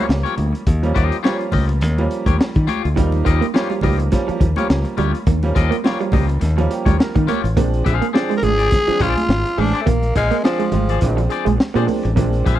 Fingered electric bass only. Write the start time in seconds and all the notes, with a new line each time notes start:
0.09 C#2
0.38 D2
0.67 D#2
0.96 D#2
1.53 C#2
1.82 D#2
2.26 D#2
2.56 D#3
2.85 D2
2.97 D#2
3.26 D#2
3.84 C#2
4.29 muted fingered electric bass stroke
4.41 D#2
4.70 C#2
4.98 D2
5.27 D#2
5.56 D#2
6.13 C#2
6.42 D#2
6.86 D#2
7.16 D#3
7.44 A1
7.57 A#1
7.86 A#1
8.43 G#1
8.88 muted fingered electric bass stroke
9.00 A#1
9.29 G#1
9.58 A1
9.87 A#1
10.16 A#1
10.73 G#1
11.02 A#1
11.47 A#1
11.75 A#2
12.05 A1
12.17 A#1
12.46 A#1